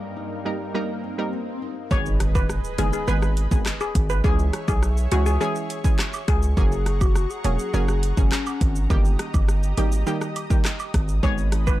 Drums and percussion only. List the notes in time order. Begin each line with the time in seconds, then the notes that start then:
1.91 kick, high woodblock, shaker
2.06 shaker
2.20 cross-stick, closed hi-hat, cabasa, shaker
2.35 kick, high woodblock, shaker
2.50 cross-stick, shaker
2.64 shaker
2.78 closed hi-hat, cabasa, shaker
2.93 shaker
3.08 shaker
3.22 cross-stick, shaker
3.37 closed hi-hat, cabasa, shaker
3.52 kick, shaker
3.66 cross-stick, clap, shaker
3.80 high woodblock, shaker
3.95 kick, closed hi-hat, cabasa, shaker
4.10 shaker
4.24 kick, high woodblock, shaker
4.39 shaker
4.53 cross-stick, closed hi-hat, cabasa, shaker
4.68 kick, high woodblock, shaker
4.83 cross-stick, shaker
4.97 shaker
5.12 closed hi-hat, cabasa, shaker
5.26 shaker
5.41 shaker
5.56 shaker
5.70 closed hi-hat, cabasa, shaker
5.84 kick, shaker
5.99 cross-stick, clap, shaker
6.13 high woodblock, shaker
6.28 kick, cross-stick, closed hi-hat, cabasa, shaker
6.42 shaker
6.57 kick, high woodblock, shaker
6.72 shaker
6.86 cross-stick, closed hi-hat, cabasa, shaker
7.01 kick, high woodblock, shaker
7.15 cross-stick, shaker
7.30 shaker
7.44 closed hi-hat, cabasa, shaker
7.59 shaker
7.74 shaker
7.88 cross-stick, shaker
8.03 closed hi-hat, cabasa, shaker
8.17 kick, shaker
8.32 cross-stick, clap, shaker
8.46 high woodblock, shaker
8.61 kick, closed hi-hat, cabasa, shaker
8.76 shaker
8.90 kick, high woodblock, shaker
9.05 shaker
9.19 cross-stick, closed hi-hat, cabasa, shaker
9.34 kick, high woodblock, shaker
9.48 cross-stick, shaker
9.63 shaker
9.78 closed hi-hat, cabasa, high woodblock, shaker
9.92 shaker
10.07 shaker
10.21 cross-stick, shaker
10.36 closed hi-hat, cabasa, high woodblock, shaker
10.50 kick, shaker
10.65 cross-stick, clap, shaker
10.79 high woodblock, shaker
10.94 kick, cross-stick, closed hi-hat, cabasa, shaker
11.08 shaker
11.23 kick, high woodblock, shaker
11.38 shaker
11.52 cross-stick, closed hi-hat, cabasa, shaker
11.67 kick, high woodblock, shaker